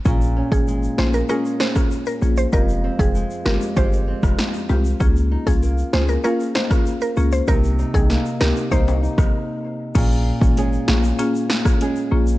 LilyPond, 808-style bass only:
\new Staff \with { instrumentName = "808-style bass" } { \clef bass \time 4/4 \key bes \dorian \tempo 4 = 97 bes,,8. aes,,8. bes,,8 r4. bes,,8 | f,,8. f,,8 r16 g,,16 r16 g,,8. f,,16 r8 c,8 | des,8. c,8. des,8 r4. des,8 | c,8. c,8 r16 des,16 r16 c,8. bes,,16 r4 |
bes,,8. aes,,8. bes,,8 r4. bes,,8 | }